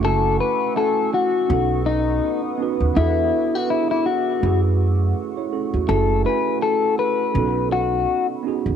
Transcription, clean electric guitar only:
X:1
M:4/4
L:1/16
Q:"Swing 16ths" 1/4=82
K:F#m
V:1 name="Clean electric guitar"
A2 B2 A2 F4 ^D3 z3 | E3 F E E F3 z6 z | A2 B2 A2 B4 F3 z3 |]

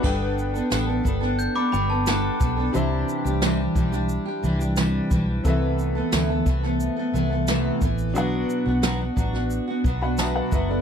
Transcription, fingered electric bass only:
X:1
M:4/4
L:1/16
Q:1/4=89
K:G
V:1 name="Fingered electric bass" clef=bass
G,,,4 A,,,2 G,,,3 z G,,,4 B,,,2 | C,,2 z C,,3 B,,,3 z C,,4 B,,,2 | C,,4 D,,2 C,,3 z C,,4 A,,,2 | B,,,2 z B,,,3 A,,,3 z B,,,4 F,,,2 |]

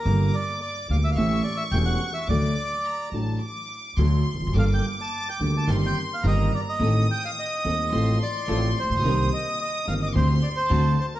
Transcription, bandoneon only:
X:1
M:4/4
L:1/16
Q:1/4=107
K:Gm
V:1 name="Bandoneon"
B2 d2 d2 f =e/2 f/2 e2 d e g ^f2 e | d6 z8 z2 | f g2 a2 g2 a2 g2 f e2 d e- | e2 g f e6 d4 c2- |
c2 e2 e2 f e c2 d c3 c B/2 z/2 |]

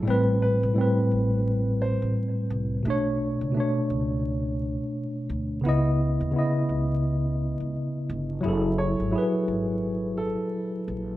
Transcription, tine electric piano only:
X:1
M:4/4
L:1/8
Q:"Swing 16ths" 1/4=86
K:Bdor
V:1 name="Tine electric piano"
[A,,=G,=CB] z [A,,G,CB]3 z3 | [B,,A,Dc] z [B,,A,Dc]3 z3 | [C,B,E^d] z [C,B,Ed]3 z3 | [F,EGA] z [F,EGB]3 z3 |]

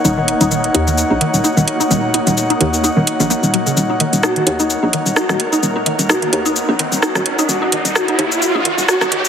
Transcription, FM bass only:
X:1
M:4/4
L:1/16
Q:"Swing 16ths" 1/4=129
K:Ebm
V:1 name="FM bass" clef=bass
E,,,2 z E,,,2 z E,,2 z B,,, z E,,, z E,,, z2 | E,,,2 z E,,,2 z E,,2 z E,,, z B,,, z E,,,2 z | E,,,2 z E,,,2 z E,,2 z B,,, z E,,, z E,,, z2 | E,,,2 z E,,,2 z E,,2 z B,,, z E,,, z E,,, z2 |
E,,,2 z E,,,2 z E,,2 z B,,, z E,,, z E,,, z2 |]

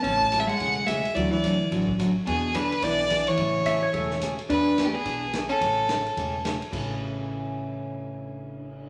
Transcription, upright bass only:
X:1
M:4/4
L:1/8
Q:"Swing" 1/4=216
K:A
V:1 name="Upright bass" clef=bass
A,,,4 E,,,4 | D,,4 A,,,4 | E,,4 B,,,4 | A,,,4 E,,,4 |
E,,4 B,,,4 | A,,,4 E,,,4 | A,,,8- | A,,,8 |]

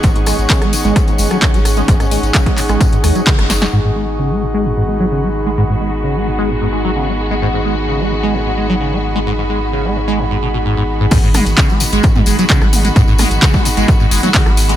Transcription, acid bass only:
X:1
M:4/4
L:1/16
Q:1/4=130
K:G#m
V:1 name="Acid bass" clef=bass
G,, G,, G, z C, G, G,, G, G,, G,, G, F, C, G, z G, | G,, G,, G, z C, G, G,, G, G,, G,, G, F, C, G, z G, | G,, G,, G, z C, G, G,, G, G,, G,, G, F, C, G, z G, | G,, G,, G, z C, G, G,, G, G,, G,, G, F, C, G, z G, |
G,, G,, G, z C, G, G,, G, G,, G,, G, F, C, G, z G, | G,, G,, G, z C, G, G,, G, G,, G,, B,, B,, G,, G,, z G,, | G,, G,, G, z C, G, G,, G, G,, G,, G, F, C, G, z G, | G,, G,, G, z C, G, G,, G, G,, G,, G, F, C, G, z G, |]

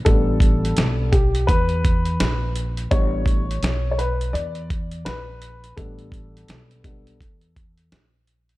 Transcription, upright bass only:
X:1
M:4/4
L:1/8
Q:"Swing 16ths" 1/4=84
K:Amix
V:1 name="Upright bass" clef=bass
A,,,2 B,,,2 E,,2 _B,,,2 | A,,,2 B,,,2 E,,2 _B,,,2 | A,,,2 B,,,2 E,,2 _B,,,2 |]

